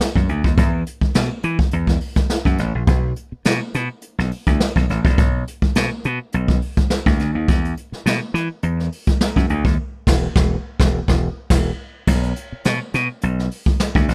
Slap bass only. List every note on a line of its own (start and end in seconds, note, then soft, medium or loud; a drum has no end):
0.16 0.27 F#2 medium
0.29 0.42 D2 medium
0.45 0.56 D#2 medium
0.58 0.83 E2 loud
1.02 muted slap bass stroke soft
1.15 1.28 B2 medium
1.44 1.57 E3 loud
1.73 1.98 E2 medium
2.46 2.57 F#2 medium
2.59 2.72 A1 medium
2.75 2.86 A#1 medium
2.88 3.12 B1 loud
3.32 muted slap bass stroke soft
3.46 3.59 B2 medium
3.75 3.88 B2 loud
4.18 4.30 B1 medium
4.47 4.59 D2 medium
4.76 4.88 B1 medium
4.90 5.03 A1 medium
5.05 5.18 A#1 medium
5.18 5.43 B1 loud
5.62 muted slap bass stroke soft
5.76 5.89 B2 medium
6.05 6.18 B2 loud
6.34 6.58 B1 loud
7.06 7.18 D2 loud
7.20 7.33 D2 medium
7.35 7.49 D#2 medium
7.49 7.73 E2 loud
7.92 muted slap bass stroke soft
8.06 8.19 B2 medium
8.34 8.47 E3 loud
8.63 8.88 E2 medium
9.36 9.48 F#2 medium
9.50 9.63 D2 medium
9.65 9.76 D#2 medium
10.07 10.27 E1 loud
10.36 10.56 E1 medium
10.80 10.99 E1 medium
11.08 11.27 E1 loud
11.50 11.70 E1 medium
12.07 12.32 B1 loud
12.52 muted slap bass stroke soft
12.66 12.78 B2 medium
12.94 13.07 B2 loud
13.23 13.48 B1 loud
13.95 14.07 D2 medium
14.08 14.14 A1 medium